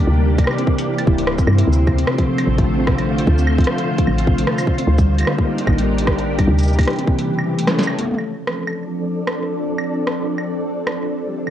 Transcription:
Already playing: A#3 D4 G4 D5
0.07 D2 C3 E3
0.18 G3
0.27 C3
0.38 C3 C4, kick, closed hi-hat, high woodblock
0.44 C3, cross-stick, high woodblock
0.51 high woodblock
0.59 C4, closed hi-hat
0.67 C3, kick
0.79 G3 C5, closed hi-hat
0.87 C3
0.99 G3, closed hi-hat, high woodblock
1.07 D1 E4, kick
1.18 C3, closed hi-hat
1.27 A#3, cross-stick
1.38 C4, kick, cabasa
1.47 G2 C3, high woodblock
1.58 E4, closed hi-hat
1.67 D2 C3 D3
1.73 A3, cabasa
1.79 C3 F4
1.87 C3, kick, high woodblock
1.98 C4, closed hi-hat
2.07 C3, cross-stick
2.18 F3, kick, closed hi-hat
2.27 C3
2.38 F3, closed hi-hat, high woodblock
2.47 A1 C3
2.58 A3, kick, closed hi-hat
2.67 F3
2.79 C4
2.87 C3, kick, cross-stick
2.98 F3, closed hi-hat, high woodblock
3.07 C3
3.18 C3, closed hi-hat
3.27 D2 C3, kick
3.38 C4, cabasa
3.47 C3, high woodblock
3.58 F3, kick, closed hi-hat
3.60 closed hi-hat
3.64 C3, cross-stick, closed hi-hat
3.78 F3, closed hi-hat
3.87 C3
3.98 A3, kick, closed hi-hat
4.07 A1 F3, high woodblock
4.18 C4, closed hi-hat
4.27 C3, kick
4.38 F3, closed hi-hat
4.47 C3, cross-stick
4.58 C3, closed hi-hat, cabasa, high woodblock
4.67 C3, kick
4.78 C4, closed hi-hat
4.87 D2 D3 D#4
4.97 G3 A#3, kick, cabasa
5.07 D3
5.17 G3 D4, closed hi-hat, high woodblock
5.21 high woodblock
5.23 high woodblock
5.25 D3, cross-stick, high woodblock
5.32 G4
5.38 A#3, kick
5.46 G3 A#4
5.58 D4, closed hi-hat
5.67 A1 D3, kick, high woodblock
5.78 G3, closed hi-hat
5.87 D3
5.98 D3, closed hi-hat
6.07 D3, kick, cross-stick
6.18 D4, closed hi-hat
6.27 D3
6.38 G3, kick, closed hi-hat, high woodblock
6.47 D2 C3 E3
6.58 G3, closed hi-hat, cabasa
6.63 cabasa
6.67 C3, cabasa
6.73 cabasa
6.78 A#3, kick, closed hi-hat, high woodblock
6.81 C4, closed hi-hat
6.83 closed hi-hat
6.85 G3, cross-stick, closed hi-hat
6.90 closed hi-hat
6.93 closed hi-hat
6.96 closed hi-hat
6.98 C4, closed hi-hat
7.07 C3, kick
7.18 G3, closed hi-hat
7.27 C#3
7.39 C#3 A3, high woodblock
7.47 E3 C#4
7.59 A3 A4, closed hi-hat
7.64 C#4 C#5, cross-stick, snare
7.79 A4, snare, closed hi-hat
7.83 cabasa
7.87 A3, high woodblock
7.99 A3, closed hi-hat, mid tom
8.01 mid tom
8.04 mid tom
8.07 F3, mid tom
8.11 mid tom
8.14 C4, mid tom
8.18 D4, high woodblock
8.23 D5
8.47 cross-stick
8.67 high woodblock
9.27 cross-stick, high woodblock
9.78 high woodblock
10.07 cross-stick
10.38 high woodblock
10.87 cross-stick, high woodblock
11.27 D3 G3
11.38 D#3 D4
11.45 A#3, high woodblock

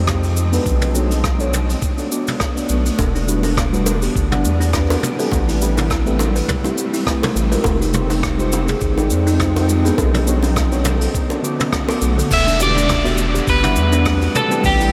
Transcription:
Already playing: F2 F3 G#3 C4 D#4
0.07 G#3 D#4 F4 G4 C5, kick, cross-stick, mid tom, cabasa
0.23 open hi-hat, cabasa
0.37 cabasa
0.52 B3 D4 F#4 A4 B4, open hi-hat, cabasa
0.66 B1 A3 B3 D4, kick, cabasa
0.82 mid tom, open hi-hat, cabasa
0.94 B3 D4 F#4 A4 C#5, cabasa
1.11 open hi-hat, cabasa
1.24 kick, cross-stick, cabasa
1.39 B3 D4 F#4 A4 C#5, cabasa
1.54 mid tom, cabasa
1.69 open hi-hat, cabasa
1.82 kick, cabasa
1.97 B3 D4 F#4 A4 D5, open hi-hat, cabasa
2.10 B3 D4 F#4 A4 D5, cabasa
2.27 mid tom, open hi-hat, cabasa
2.40 kick, cross-stick, cabasa
2.56 B3 D4 F#4 A4 D5, open hi-hat, cabasa
2.69 B1, cabasa
2.86 open hi-hat, cabasa
2.99 E1 E3 G3 B3 F#5, kick, high bongo, cabasa
3.15 D4, open hi-hat, cabasa
3.27 G3 D4 E4 F#4 B4, cabasa
3.43 D4, open hi-hat, high bongo, cabasa
3.57 kick, cross-stick, mid tom, cabasa
3.72 G3 D4 E4 F#4 B4, cabasa
3.86 high bongo, cabasa
4.02 G4, open hi-hat, cabasa
4.16 G1, kick, cabasa
4.31 G3 D4 E4 D5 F#5, mid tom, high bongo, cabasa
4.45 E2, cabasa
4.60 D4, open hi-hat, cabasa
4.73 A3 C4 E4 G4 B4, kick, cross-stick, cabasa
4.90 F#4, open hi-hat, high bongo, cabasa
5.03 A3 C4, mid tom, cabasa
5.18 A3 C4 E4 G4 A4 B4, open hi-hat, cabasa
5.32 A1, kick, high bongo, cabasa
5.48 E4, open hi-hat, cabasa
5.61 A3 C4 E4 G4 B4, cabasa
5.77 E4, mid tom, open hi-hat, high bongo, cabasa
5.90 kick, cross-stick, cabasa
6.05 A3 C4 E4 G4 A4 B4, cabasa
6.19 high bongo, cabasa
6.36 B4, open hi-hat, cabasa
6.49 kick, mid tom, cabasa
6.64 A3 C4 E4 G4, high bongo, cabasa
6.78 cabasa
6.94 E4, open hi-hat, cabasa
7.06 A3 C4 E4 G4 B4, kick, cross-stick, cabasa
7.22 A4, mid tom, open hi-hat, high bongo, cabasa
7.36 A1, cabasa
7.51 G#3 D#4 F4 G4 A#4 B4, open hi-hat, cabasa
7.64 F1 F3 G#3 D#4 G5, kick, high bongo, cabasa
7.81 D#4, open hi-hat, cabasa
7.93 G#3 D#4 F4 G4 C5, mid tom, cabasa
8.10 D#4, open hi-hat, high bongo, cabasa
8.23 kick, cross-stick, cabasa
8.38 G#3 D#4 F4 G4 C5, cabasa
8.52 high bongo, cabasa
8.68 G#4, mid tom, open hi-hat, cabasa
8.81 G#1, kick, cabasa
8.96 G#3 D#4 F4 D5 G5, high bongo, cabasa
9.10 F2, cabasa
9.27 D#4, open hi-hat, cabasa
9.39 G#3 D#4 F4 C5 G5, kick, cross-stick, mid tom, cabasa
9.56 G4, open hi-hat, high bongo, cabasa
9.69 cabasa
9.84 B3 D4 F#4 G#4 A4 B4, open hi-hat, cabasa
9.98 B1 D3 A3 B3, kick, high bongo, cabasa
10.14 C#4, mid tom, open hi-hat, cabasa
10.26 B3 D4 F#4 A4 C#5, cabasa
10.43 C#4, open hi-hat, high bongo, cabasa
10.56 kick, cross-stick, cabasa
10.71 B3 D4 F#4 A4 C#5, open hi-hat, cabasa
10.85 mid tom, high bongo, cabasa
11.01 A4, open hi-hat, cabasa
11.15 kick, cabasa
11.29 B3 C#4 D4 F#4 A4 D5, high bongo, cabasa
11.42 D3 B3 F#4 A4 D6, cabasa
11.60 C#4, mid tom, open hi-hat, cabasa
11.73 kick, cross-stick, cabasa
11.88 D3 B3 F#4 A4 D6, open hi-hat, high bongo, cabasa
12.02 B1, cabasa
12.18 A4, open hi-hat, cabasa
12.31 E1 E3 G3 B3 D4 E5 F#5, kick, open hi-hat, crash, downlifter, cabasa
12.47 D4, open hi-hat, cabasa
12.59 B3 E4 F#4 G4 D5, cabasa
12.63 D5
12.76 D4, cabasa
12.89 kick, cross-stick, mid tom, open hi-hat, cabasa
13.04 B3 E4 F#4 G4 D5, open hi-hat, cabasa
13.18 cabasa
13.34 G4, cabasa
13.47 G1 B4, kick, open hi-hat, cabasa
13.62 G3 B3 D4 E4 E5 F#5, mid tom, open hi-hat, cabasa
13.76 E2, cabasa
13.92 D4, cabasa
14.05 A3 C4 E4 G4 B4, kick, cross-stick, open hi-hat, cabasa
14.21 F#4, open hi-hat, cabasa
14.35 A3 C4 A4, mid tom, cabasa
14.50 A3 C4 E4 G4 A4 B4, cabasa
14.64 A1 G4, kick, open hi-hat, cabasa
14.80 E4, open hi-hat, cabasa

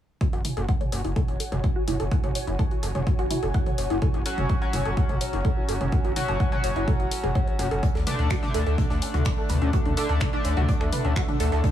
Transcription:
0.21 F#4 C#5 G#5, kick, closed hi-hat
0.33 F#1 F#4, closed hi-hat
0.45 E4, open hi-hat, mid tom
0.57 F#1 A4, closed hi-hat
0.69 F#5, kick, closed hi-hat
0.81 C#5, closed hi-hat, mid tom
0.92 F#1 C#5, open hi-hat
1.04 F#1 E4, closed hi-hat
1.16 A4, kick, closed hi-hat, mid tom
1.28 F#1 F#4, closed hi-hat
1.40 A4, open hi-hat
1.52 F#1 C#5, closed hi-hat, mid tom
1.64 F#4, kick, closed hi-hat
1.76 F#4
1.88 F#1 E4, open hi-hat, mid tom
2.00 F#1 A4, closed hi-hat
2.12 F#5, kick, closed hi-hat
2.24 F#1 C#5, closed hi-hat, mid tom
2.35 C#5, open hi-hat
2.47 F#1 E4, closed hi-hat
2.59 A4, kick, closed hi-hat, mid tom
2.71 F#4, closed hi-hat
2.83 F#1 A4, open hi-hat
2.95 F#1 C#5, closed hi-hat, mid tom
3.07 F#4, kick, closed hi-hat
3.19 F#1 F#4, closed hi-hat
3.31 E4, open hi-hat, mid tom
3.43 F#1 A4, closed hi-hat
3.54 F#5, kick, closed hi-hat
3.66 C#5, closed hi-hat, mid tom
3.78 F#1 C#5, open hi-hat
3.90 F#1 E4, closed hi-hat
4.02 A4, kick, closed hi-hat, mid tom
4.14 F#1 F#4, closed hi-hat
4.26 F#3 C#4 F#4 A4, open hi-hat
4.38 F#1 C#5, closed hi-hat, mid tom
4.49 F#4, kick, closed hi-hat
4.62 F#3 C#4 F#4, closed hi-hat
4.73 F#1 E4, open hi-hat, mid tom
4.85 F#1 A4, closed hi-hat
4.97 F#5, kick, closed hi-hat
5.09 F#1 C#5, closed hi-hat, mid tom
5.21 C#5, open hi-hat
5.33 F#1 E4, closed hi-hat
5.45 A4, kick, closed hi-hat, mid tom
5.57 F#4
5.69 F#1 A4, open hi-hat
5.81 F#1 C#5, closed hi-hat, mid tom
5.92 F#4, kick, closed hi-hat
6.04 F#1 F#4, closed hi-hat
6.16 F#3 C#4 E4 F#4, open hi-hat, mid tom
6.28 F#1 A4, closed hi-hat
6.40 F#5, kick, closed hi-hat
6.52 F#3 C#4 F#4 C#5, closed hi-hat, mid tom
6.64 F#1 C#5, open hi-hat
6.76 F#1 E4, closed hi-hat
6.88 A4, kick, closed hi-hat, mid tom
7.00 F#1 F#4, closed hi-hat
7.11 A4, open hi-hat
7.23 F#1 G#4, closed hi-hat, mid tom
7.35 C#5, kick, closed hi-hat
7.47 C#5, closed hi-hat
7.59 F#1 F#4, open hi-hat, mid tom
7.71 F#1 A4, closed hi-hat
7.83 D4 A4 D5 E5, kick, closed hi-hat
7.95 D2 A4, snare, closed hi-hat
8.07 D3 A3 D4 B4, closed hi-hat, open hi-hat, mid tom
8.19 D2 C#4, closed hi-hat
8.30 F#4, finger snap, kick, snare, closed hi-hat
8.43 D3 A3 D4, snare, closed hi-hat, mid tom
8.54 D2 A4, closed hi-hat, open hi-hat
8.67 D2 A4, closed hi-hat
8.78 D4, kick, closed hi-hat, mid tom
8.90 D2 D4, snare, closed hi-hat
9.02 C#4, closed hi-hat, open hi-hat
9.14 D2 F#4, closed hi-hat, mid tom
9.25 D5, finger snap, kick, snare, closed hi-hat
9.38 A4
9.49 D2 B4, closed hi-hat, open hi-hat, mid tom
9.62 D2 C#4, closed hi-hat
9.73 F#4, kick, closed hi-hat
9.86 D2 D4, closed hi-hat, mid tom
9.97 D3 A3 D4 A4, closed hi-hat, open hi-hat
10.09 D2 A4, closed hi-hat
10.20 D4, finger snap, kick, snare, closed hi-hat, mid tom
10.33 D3 A3 D4, closed hi-hat
10.44 D2 C#4, closed hi-hat, open hi-hat
10.57 D2 F#4, closed hi-hat, mid tom
10.69 D5, kick, closed hi-hat
10.81 D2 A4, finger snap, closed hi-hat
10.93 B4, closed hi-hat, open hi-hat, mid tom
11.05 D2 C#4, closed hi-hat
11.16 F#4, finger snap, kick, snare, closed hi-hat
11.28 D4, closed hi-hat, mid tom
11.40 D2 A4, closed hi-hat, open hi-hat
11.52 D2 A4, snare, closed hi-hat
11.64 D4, kick, closed hi-hat, mid tom

